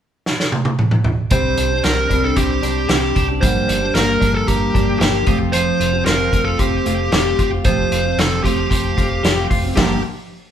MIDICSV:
0, 0, Header, 1, 6, 480
1, 0, Start_track
1, 0, Tempo, 527704
1, 1202, Time_signature, 4, 2, 24, 8
1, 9562, End_track
2, 0, Start_track
2, 0, Title_t, "Lead electric guitar"
2, 0, Program_c, 0, 29
2, 1201, Note_on_c, 0, 72, 87
2, 1678, Note_off_c, 0, 72, 0
2, 1682, Note_on_c, 0, 70, 76
2, 2042, Note_on_c, 0, 69, 84
2, 2052, Note_off_c, 0, 70, 0
2, 2158, Note_off_c, 0, 69, 0
2, 2162, Note_on_c, 0, 67, 85
2, 2619, Note_off_c, 0, 67, 0
2, 2630, Note_on_c, 0, 67, 85
2, 2969, Note_off_c, 0, 67, 0
2, 3104, Note_on_c, 0, 72, 99
2, 3590, Note_off_c, 0, 72, 0
2, 3594, Note_on_c, 0, 70, 83
2, 3951, Note_on_c, 0, 69, 77
2, 3966, Note_off_c, 0, 70, 0
2, 4071, Note_off_c, 0, 69, 0
2, 4071, Note_on_c, 0, 67, 91
2, 4534, Note_off_c, 0, 67, 0
2, 4545, Note_on_c, 0, 67, 75
2, 4885, Note_off_c, 0, 67, 0
2, 5024, Note_on_c, 0, 72, 93
2, 5505, Note_off_c, 0, 72, 0
2, 5508, Note_on_c, 0, 70, 74
2, 5863, Note_on_c, 0, 69, 76
2, 5883, Note_off_c, 0, 70, 0
2, 5998, Note_off_c, 0, 69, 0
2, 5998, Note_on_c, 0, 67, 81
2, 6475, Note_off_c, 0, 67, 0
2, 6485, Note_on_c, 0, 67, 82
2, 6816, Note_off_c, 0, 67, 0
2, 6957, Note_on_c, 0, 72, 85
2, 7446, Note_on_c, 0, 69, 68
2, 7452, Note_off_c, 0, 72, 0
2, 7670, Note_off_c, 0, 69, 0
2, 7673, Note_on_c, 0, 67, 63
2, 8603, Note_off_c, 0, 67, 0
2, 8876, Note_on_c, 0, 67, 75
2, 9103, Note_off_c, 0, 67, 0
2, 9562, End_track
3, 0, Start_track
3, 0, Title_t, "Clean electric guitar"
3, 0, Program_c, 1, 27
3, 1433, Note_on_c, 1, 62, 56
3, 1670, Note_on_c, 1, 60, 49
3, 1903, Note_off_c, 1, 62, 0
3, 2135, Note_off_c, 1, 60, 0
3, 2146, Note_on_c, 1, 60, 52
3, 2868, Note_on_c, 1, 62, 57
3, 3159, Note_off_c, 1, 60, 0
3, 3161, Note_off_c, 1, 62, 0
3, 3352, Note_on_c, 1, 62, 50
3, 3593, Note_on_c, 1, 58, 55
3, 3815, Note_off_c, 1, 62, 0
3, 4061, Note_off_c, 1, 58, 0
3, 4072, Note_on_c, 1, 58, 56
3, 4842, Note_off_c, 1, 58, 0
3, 5034, Note_on_c, 1, 53, 79
3, 5278, Note_on_c, 1, 65, 54
3, 5514, Note_on_c, 1, 60, 54
3, 5761, Note_off_c, 1, 65, 0
3, 5984, Note_off_c, 1, 60, 0
3, 5995, Note_on_c, 1, 60, 55
3, 6728, Note_on_c, 1, 65, 58
3, 6963, Note_off_c, 1, 53, 0
3, 7201, Note_off_c, 1, 65, 0
3, 7205, Note_on_c, 1, 65, 57
3, 7437, Note_off_c, 1, 60, 0
3, 7449, Note_on_c, 1, 60, 59
3, 7682, Note_off_c, 1, 65, 0
3, 7906, Note_off_c, 1, 60, 0
3, 7917, Note_on_c, 1, 60, 50
3, 8644, Note_on_c, 1, 65, 60
3, 8889, Note_off_c, 1, 60, 0
3, 8892, Note_off_c, 1, 65, 0
3, 9562, End_track
4, 0, Start_track
4, 0, Title_t, "Steel-string acoustic guitar"
4, 0, Program_c, 2, 25
4, 1194, Note_on_c, 2, 48, 68
4, 1196, Note_on_c, 2, 55, 64
4, 1203, Note_on_c, 2, 60, 67
4, 1208, Note_on_c, 2, 62, 75
4, 1215, Note_on_c, 2, 67, 83
4, 1534, Note_off_c, 2, 67, 0
4, 1545, Note_on_c, 2, 67, 44
4, 1554, Note_off_c, 2, 62, 0
4, 1558, Note_off_c, 2, 48, 0
4, 1558, Note_off_c, 2, 55, 0
4, 1562, Note_off_c, 2, 60, 0
4, 1565, Note_on_c, 2, 62, 50
4, 1581, Note_on_c, 2, 60, 40
4, 1908, Note_on_c, 2, 55, 54
4, 1910, Note_off_c, 2, 60, 0
4, 1913, Note_off_c, 2, 67, 0
4, 1919, Note_off_c, 2, 62, 0
4, 1921, Note_on_c, 2, 60, 57
4, 1930, Note_on_c, 2, 62, 60
4, 1938, Note_on_c, 2, 67, 58
4, 2377, Note_off_c, 2, 55, 0
4, 2379, Note_off_c, 2, 60, 0
4, 2380, Note_on_c, 2, 55, 53
4, 2390, Note_on_c, 2, 60, 52
4, 2400, Note_off_c, 2, 62, 0
4, 2404, Note_on_c, 2, 62, 58
4, 2408, Note_off_c, 2, 67, 0
4, 2412, Note_on_c, 2, 67, 50
4, 2622, Note_off_c, 2, 55, 0
4, 2633, Note_on_c, 2, 55, 52
4, 2634, Note_off_c, 2, 60, 0
4, 2641, Note_off_c, 2, 62, 0
4, 2645, Note_off_c, 2, 67, 0
4, 2645, Note_on_c, 2, 60, 56
4, 2653, Note_on_c, 2, 62, 54
4, 2661, Note_on_c, 2, 67, 58
4, 2969, Note_off_c, 2, 67, 0
4, 2980, Note_on_c, 2, 67, 50
4, 2989, Note_off_c, 2, 62, 0
4, 2995, Note_off_c, 2, 55, 0
4, 3000, Note_on_c, 2, 62, 49
4, 3002, Note_off_c, 2, 60, 0
4, 3014, Note_on_c, 2, 60, 44
4, 3103, Note_on_c, 2, 43, 63
4, 3109, Note_off_c, 2, 67, 0
4, 3110, Note_off_c, 2, 62, 0
4, 3110, Note_on_c, 2, 50, 60
4, 3114, Note_off_c, 2, 60, 0
4, 3116, Note_on_c, 2, 53, 75
4, 3118, Note_on_c, 2, 58, 69
4, 3121, Note_on_c, 2, 62, 74
4, 3125, Note_on_c, 2, 67, 75
4, 3453, Note_off_c, 2, 67, 0
4, 3461, Note_off_c, 2, 62, 0
4, 3464, Note_on_c, 2, 67, 47
4, 3470, Note_off_c, 2, 43, 0
4, 3470, Note_off_c, 2, 58, 0
4, 3472, Note_on_c, 2, 62, 49
4, 3474, Note_off_c, 2, 50, 0
4, 3477, Note_off_c, 2, 53, 0
4, 3481, Note_on_c, 2, 58, 42
4, 3492, Note_on_c, 2, 53, 45
4, 3807, Note_off_c, 2, 53, 0
4, 3818, Note_off_c, 2, 58, 0
4, 3818, Note_on_c, 2, 53, 55
4, 3827, Note_off_c, 2, 62, 0
4, 3829, Note_on_c, 2, 58, 60
4, 3830, Note_off_c, 2, 67, 0
4, 3838, Note_on_c, 2, 62, 51
4, 3848, Note_on_c, 2, 67, 59
4, 4306, Note_off_c, 2, 53, 0
4, 4309, Note_on_c, 2, 53, 53
4, 4312, Note_off_c, 2, 58, 0
4, 4317, Note_off_c, 2, 62, 0
4, 4322, Note_on_c, 2, 58, 49
4, 4328, Note_on_c, 2, 62, 63
4, 4334, Note_off_c, 2, 67, 0
4, 4338, Note_on_c, 2, 67, 60
4, 4535, Note_off_c, 2, 53, 0
4, 4546, Note_on_c, 2, 53, 57
4, 4547, Note_off_c, 2, 58, 0
4, 4556, Note_off_c, 2, 62, 0
4, 4558, Note_on_c, 2, 58, 61
4, 4567, Note_off_c, 2, 67, 0
4, 4567, Note_on_c, 2, 62, 59
4, 4576, Note_on_c, 2, 67, 69
4, 4776, Note_off_c, 2, 53, 0
4, 4787, Note_on_c, 2, 53, 66
4, 4793, Note_on_c, 2, 57, 70
4, 4795, Note_off_c, 2, 58, 0
4, 4798, Note_on_c, 2, 60, 72
4, 4799, Note_off_c, 2, 62, 0
4, 4799, Note_off_c, 2, 67, 0
4, 4803, Note_on_c, 2, 65, 77
4, 4810, Note_on_c, 2, 67, 71
4, 5380, Note_off_c, 2, 67, 0
4, 5383, Note_on_c, 2, 67, 51
4, 5394, Note_off_c, 2, 57, 0
4, 5397, Note_off_c, 2, 60, 0
4, 5397, Note_off_c, 2, 65, 0
4, 5400, Note_on_c, 2, 65, 45
4, 5411, Note_off_c, 2, 53, 0
4, 5414, Note_on_c, 2, 60, 39
4, 5737, Note_off_c, 2, 60, 0
4, 5737, Note_on_c, 2, 57, 57
4, 5748, Note_off_c, 2, 65, 0
4, 5748, Note_on_c, 2, 60, 61
4, 5749, Note_off_c, 2, 67, 0
4, 5759, Note_on_c, 2, 65, 62
4, 5768, Note_on_c, 2, 67, 62
4, 6210, Note_off_c, 2, 57, 0
4, 6221, Note_on_c, 2, 57, 57
4, 6224, Note_off_c, 2, 60, 0
4, 6235, Note_on_c, 2, 60, 52
4, 6239, Note_off_c, 2, 65, 0
4, 6242, Note_on_c, 2, 65, 59
4, 6248, Note_off_c, 2, 67, 0
4, 6252, Note_on_c, 2, 67, 56
4, 6458, Note_off_c, 2, 57, 0
4, 6469, Note_on_c, 2, 57, 53
4, 6472, Note_off_c, 2, 60, 0
4, 6479, Note_off_c, 2, 65, 0
4, 6483, Note_on_c, 2, 60, 61
4, 6484, Note_off_c, 2, 67, 0
4, 6489, Note_on_c, 2, 65, 62
4, 6497, Note_on_c, 2, 67, 63
4, 6823, Note_off_c, 2, 67, 0
4, 6833, Note_off_c, 2, 57, 0
4, 6834, Note_on_c, 2, 67, 56
4, 6840, Note_off_c, 2, 60, 0
4, 6843, Note_off_c, 2, 65, 0
4, 6855, Note_on_c, 2, 65, 48
4, 6865, Note_on_c, 2, 60, 43
4, 6955, Note_off_c, 2, 67, 0
4, 6961, Note_off_c, 2, 60, 0
4, 6961, Note_on_c, 2, 53, 68
4, 6966, Note_off_c, 2, 65, 0
4, 6968, Note_on_c, 2, 57, 66
4, 6972, Note_on_c, 2, 60, 68
4, 6977, Note_on_c, 2, 65, 62
4, 6983, Note_on_c, 2, 67, 71
4, 7305, Note_off_c, 2, 67, 0
4, 7316, Note_on_c, 2, 67, 49
4, 7320, Note_off_c, 2, 53, 0
4, 7323, Note_off_c, 2, 57, 0
4, 7324, Note_off_c, 2, 65, 0
4, 7325, Note_off_c, 2, 60, 0
4, 7335, Note_on_c, 2, 65, 52
4, 7348, Note_on_c, 2, 60, 42
4, 7678, Note_off_c, 2, 67, 0
4, 7679, Note_on_c, 2, 57, 60
4, 7682, Note_off_c, 2, 60, 0
4, 7687, Note_off_c, 2, 65, 0
4, 7692, Note_on_c, 2, 60, 55
4, 7702, Note_on_c, 2, 65, 56
4, 7711, Note_on_c, 2, 67, 60
4, 8142, Note_off_c, 2, 57, 0
4, 8153, Note_on_c, 2, 57, 53
4, 8155, Note_off_c, 2, 60, 0
4, 8166, Note_on_c, 2, 60, 48
4, 8175, Note_off_c, 2, 65, 0
4, 8179, Note_on_c, 2, 65, 61
4, 8180, Note_off_c, 2, 67, 0
4, 8189, Note_on_c, 2, 67, 60
4, 8386, Note_off_c, 2, 57, 0
4, 8397, Note_on_c, 2, 57, 68
4, 8399, Note_off_c, 2, 60, 0
4, 8408, Note_off_c, 2, 65, 0
4, 8409, Note_on_c, 2, 60, 69
4, 8415, Note_off_c, 2, 67, 0
4, 8419, Note_on_c, 2, 65, 68
4, 8428, Note_on_c, 2, 67, 66
4, 8751, Note_off_c, 2, 67, 0
4, 8760, Note_off_c, 2, 57, 0
4, 8762, Note_on_c, 2, 67, 63
4, 8765, Note_off_c, 2, 65, 0
4, 8767, Note_off_c, 2, 60, 0
4, 8776, Note_on_c, 2, 65, 57
4, 8793, Note_on_c, 2, 60, 52
4, 8879, Note_on_c, 2, 43, 69
4, 8883, Note_off_c, 2, 67, 0
4, 8888, Note_on_c, 2, 50, 63
4, 8889, Note_off_c, 2, 65, 0
4, 8892, Note_off_c, 2, 60, 0
4, 8892, Note_on_c, 2, 53, 79
4, 8896, Note_on_c, 2, 58, 74
4, 8902, Note_on_c, 2, 62, 77
4, 8903, Note_on_c, 2, 67, 84
4, 9074, Note_off_c, 2, 43, 0
4, 9078, Note_off_c, 2, 50, 0
4, 9080, Note_off_c, 2, 53, 0
4, 9082, Note_off_c, 2, 58, 0
4, 9085, Note_off_c, 2, 62, 0
4, 9086, Note_off_c, 2, 67, 0
4, 9562, End_track
5, 0, Start_track
5, 0, Title_t, "Fingered electric bass"
5, 0, Program_c, 3, 33
5, 1194, Note_on_c, 3, 36, 94
5, 1394, Note_off_c, 3, 36, 0
5, 1436, Note_on_c, 3, 36, 85
5, 1635, Note_off_c, 3, 36, 0
5, 1678, Note_on_c, 3, 36, 91
5, 1876, Note_off_c, 3, 36, 0
5, 1912, Note_on_c, 3, 36, 91
5, 2112, Note_off_c, 3, 36, 0
5, 2153, Note_on_c, 3, 36, 85
5, 2352, Note_off_c, 3, 36, 0
5, 2389, Note_on_c, 3, 36, 80
5, 2590, Note_off_c, 3, 36, 0
5, 2630, Note_on_c, 3, 36, 97
5, 2830, Note_off_c, 3, 36, 0
5, 2879, Note_on_c, 3, 36, 95
5, 3075, Note_off_c, 3, 36, 0
5, 3116, Note_on_c, 3, 31, 89
5, 3313, Note_off_c, 3, 31, 0
5, 3348, Note_on_c, 3, 31, 94
5, 3549, Note_off_c, 3, 31, 0
5, 3587, Note_on_c, 3, 31, 89
5, 3788, Note_off_c, 3, 31, 0
5, 3834, Note_on_c, 3, 31, 92
5, 4032, Note_off_c, 3, 31, 0
5, 4075, Note_on_c, 3, 31, 83
5, 4272, Note_off_c, 3, 31, 0
5, 4321, Note_on_c, 3, 31, 95
5, 4516, Note_off_c, 3, 31, 0
5, 4552, Note_on_c, 3, 31, 96
5, 4750, Note_off_c, 3, 31, 0
5, 4792, Note_on_c, 3, 29, 85
5, 5187, Note_off_c, 3, 29, 0
5, 5274, Note_on_c, 3, 29, 78
5, 5471, Note_off_c, 3, 29, 0
5, 5515, Note_on_c, 3, 29, 86
5, 5712, Note_off_c, 3, 29, 0
5, 5756, Note_on_c, 3, 29, 88
5, 5952, Note_off_c, 3, 29, 0
5, 5994, Note_on_c, 3, 29, 88
5, 6191, Note_off_c, 3, 29, 0
5, 6237, Note_on_c, 3, 29, 98
5, 6434, Note_off_c, 3, 29, 0
5, 6477, Note_on_c, 3, 29, 98
5, 6674, Note_off_c, 3, 29, 0
5, 6720, Note_on_c, 3, 29, 90
5, 6916, Note_off_c, 3, 29, 0
5, 6956, Note_on_c, 3, 29, 95
5, 7153, Note_off_c, 3, 29, 0
5, 7199, Note_on_c, 3, 29, 87
5, 7396, Note_off_c, 3, 29, 0
5, 7437, Note_on_c, 3, 29, 81
5, 7635, Note_off_c, 3, 29, 0
5, 7678, Note_on_c, 3, 29, 88
5, 7876, Note_off_c, 3, 29, 0
5, 7922, Note_on_c, 3, 29, 84
5, 8118, Note_off_c, 3, 29, 0
5, 8165, Note_on_c, 3, 29, 87
5, 8361, Note_off_c, 3, 29, 0
5, 8402, Note_on_c, 3, 29, 86
5, 8599, Note_off_c, 3, 29, 0
5, 8644, Note_on_c, 3, 29, 84
5, 8841, Note_off_c, 3, 29, 0
5, 8882, Note_on_c, 3, 31, 82
5, 9106, Note_off_c, 3, 31, 0
5, 9562, End_track
6, 0, Start_track
6, 0, Title_t, "Drums"
6, 239, Note_on_c, 9, 38, 61
6, 330, Note_off_c, 9, 38, 0
6, 364, Note_on_c, 9, 38, 67
6, 455, Note_off_c, 9, 38, 0
6, 475, Note_on_c, 9, 48, 69
6, 566, Note_off_c, 9, 48, 0
6, 592, Note_on_c, 9, 48, 77
6, 683, Note_off_c, 9, 48, 0
6, 716, Note_on_c, 9, 47, 78
6, 807, Note_off_c, 9, 47, 0
6, 830, Note_on_c, 9, 47, 76
6, 921, Note_off_c, 9, 47, 0
6, 950, Note_on_c, 9, 43, 83
6, 1041, Note_off_c, 9, 43, 0
6, 1188, Note_on_c, 9, 42, 102
6, 1195, Note_on_c, 9, 36, 114
6, 1279, Note_off_c, 9, 42, 0
6, 1286, Note_off_c, 9, 36, 0
6, 1432, Note_on_c, 9, 42, 79
6, 1523, Note_off_c, 9, 42, 0
6, 1671, Note_on_c, 9, 42, 71
6, 1678, Note_on_c, 9, 38, 78
6, 1762, Note_off_c, 9, 42, 0
6, 1769, Note_off_c, 9, 38, 0
6, 1915, Note_on_c, 9, 36, 66
6, 1917, Note_on_c, 9, 42, 63
6, 2005, Note_off_c, 9, 36, 0
6, 2008, Note_off_c, 9, 42, 0
6, 2151, Note_on_c, 9, 42, 91
6, 2154, Note_on_c, 9, 36, 71
6, 2242, Note_off_c, 9, 42, 0
6, 2245, Note_off_c, 9, 36, 0
6, 2393, Note_on_c, 9, 42, 60
6, 2484, Note_off_c, 9, 42, 0
6, 2630, Note_on_c, 9, 42, 69
6, 2634, Note_on_c, 9, 38, 101
6, 2721, Note_off_c, 9, 42, 0
6, 2725, Note_off_c, 9, 38, 0
6, 2874, Note_on_c, 9, 42, 72
6, 2877, Note_on_c, 9, 36, 78
6, 2965, Note_off_c, 9, 42, 0
6, 2968, Note_off_c, 9, 36, 0
6, 3117, Note_on_c, 9, 36, 110
6, 3118, Note_on_c, 9, 42, 109
6, 3208, Note_off_c, 9, 36, 0
6, 3209, Note_off_c, 9, 42, 0
6, 3358, Note_on_c, 9, 42, 82
6, 3449, Note_off_c, 9, 42, 0
6, 3591, Note_on_c, 9, 42, 78
6, 3598, Note_on_c, 9, 38, 84
6, 3682, Note_off_c, 9, 42, 0
6, 3689, Note_off_c, 9, 38, 0
6, 3835, Note_on_c, 9, 36, 74
6, 3840, Note_on_c, 9, 42, 72
6, 3926, Note_off_c, 9, 36, 0
6, 3931, Note_off_c, 9, 42, 0
6, 4076, Note_on_c, 9, 42, 82
6, 4077, Note_on_c, 9, 36, 74
6, 4167, Note_off_c, 9, 42, 0
6, 4168, Note_off_c, 9, 36, 0
6, 4320, Note_on_c, 9, 36, 84
6, 4326, Note_on_c, 9, 42, 58
6, 4411, Note_off_c, 9, 36, 0
6, 4417, Note_off_c, 9, 42, 0
6, 4557, Note_on_c, 9, 42, 72
6, 4561, Note_on_c, 9, 38, 96
6, 4648, Note_off_c, 9, 42, 0
6, 4652, Note_off_c, 9, 38, 0
6, 4790, Note_on_c, 9, 42, 71
6, 4795, Note_on_c, 9, 36, 98
6, 4881, Note_off_c, 9, 42, 0
6, 4886, Note_off_c, 9, 36, 0
6, 5030, Note_on_c, 9, 42, 102
6, 5121, Note_off_c, 9, 42, 0
6, 5283, Note_on_c, 9, 42, 80
6, 5373, Note_off_c, 9, 42, 0
6, 5512, Note_on_c, 9, 42, 76
6, 5519, Note_on_c, 9, 38, 89
6, 5603, Note_off_c, 9, 42, 0
6, 5610, Note_off_c, 9, 38, 0
6, 5756, Note_on_c, 9, 36, 69
6, 5760, Note_on_c, 9, 42, 67
6, 5847, Note_off_c, 9, 36, 0
6, 5851, Note_off_c, 9, 42, 0
6, 5996, Note_on_c, 9, 36, 77
6, 5996, Note_on_c, 9, 42, 88
6, 6087, Note_off_c, 9, 36, 0
6, 6087, Note_off_c, 9, 42, 0
6, 6239, Note_on_c, 9, 42, 55
6, 6330, Note_off_c, 9, 42, 0
6, 6478, Note_on_c, 9, 42, 73
6, 6482, Note_on_c, 9, 38, 100
6, 6569, Note_off_c, 9, 42, 0
6, 6573, Note_off_c, 9, 38, 0
6, 6721, Note_on_c, 9, 36, 74
6, 6721, Note_on_c, 9, 42, 80
6, 6812, Note_off_c, 9, 36, 0
6, 6812, Note_off_c, 9, 42, 0
6, 6954, Note_on_c, 9, 42, 104
6, 6959, Note_on_c, 9, 36, 111
6, 7045, Note_off_c, 9, 42, 0
6, 7049, Note_off_c, 9, 36, 0
6, 7204, Note_on_c, 9, 42, 84
6, 7295, Note_off_c, 9, 42, 0
6, 7446, Note_on_c, 9, 42, 78
6, 7453, Note_on_c, 9, 38, 88
6, 7537, Note_off_c, 9, 42, 0
6, 7544, Note_off_c, 9, 38, 0
6, 7680, Note_on_c, 9, 36, 67
6, 7690, Note_on_c, 9, 42, 71
6, 7771, Note_off_c, 9, 36, 0
6, 7781, Note_off_c, 9, 42, 0
6, 7922, Note_on_c, 9, 36, 75
6, 7929, Note_on_c, 9, 42, 83
6, 8013, Note_off_c, 9, 36, 0
6, 8019, Note_off_c, 9, 42, 0
6, 8166, Note_on_c, 9, 36, 75
6, 8170, Note_on_c, 9, 42, 55
6, 8257, Note_off_c, 9, 36, 0
6, 8261, Note_off_c, 9, 42, 0
6, 8408, Note_on_c, 9, 42, 69
6, 8412, Note_on_c, 9, 38, 107
6, 8499, Note_off_c, 9, 42, 0
6, 8503, Note_off_c, 9, 38, 0
6, 8648, Note_on_c, 9, 36, 87
6, 8649, Note_on_c, 9, 46, 70
6, 8739, Note_off_c, 9, 36, 0
6, 8740, Note_off_c, 9, 46, 0
6, 8887, Note_on_c, 9, 36, 96
6, 8888, Note_on_c, 9, 53, 90
6, 8889, Note_on_c, 9, 38, 104
6, 8977, Note_off_c, 9, 36, 0
6, 8979, Note_off_c, 9, 53, 0
6, 8980, Note_off_c, 9, 38, 0
6, 9562, End_track
0, 0, End_of_file